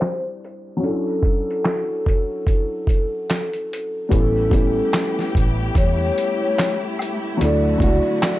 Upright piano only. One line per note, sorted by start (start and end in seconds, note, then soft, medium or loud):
0.00 0.76 G3 medium
0.00 0.78 C4 soft
0.00 0.79 D4 soft
0.00 0.81 E4 medium
0.00 0.82 D5 medium
0.77 4.05 F#3 medium
0.77 4.06 C#4 medium
0.83 4.08 D4 medium
0.83 4.09 E4 medium
0.89 4.11 A4 medium
4.09 4.48 G3 medium
4.09 4.49 B3 medium
4.09 4.50 C#4 medium
4.13 4.51 E4 medium
4.13 4.52 A4 medium
4.50 6.04 G3 medium
4.50 6.05 B3 medium
4.50 6.06 C#4 medium
4.55 6.06 E4 medium
4.55 6.07 G4 medium
7.37 7.76 F#3 medium
7.37 7.78 A3 medium
7.37 7.79 D4 medium
7.42 7.79 E4 medium
7.42 7.80 A4 medium
7.78 8.39 F#3 medium
7.78 8.39 A3 medium
7.78 8.39 D4 medium
7.82 8.39 E4 medium
7.82 8.39 F#4 medium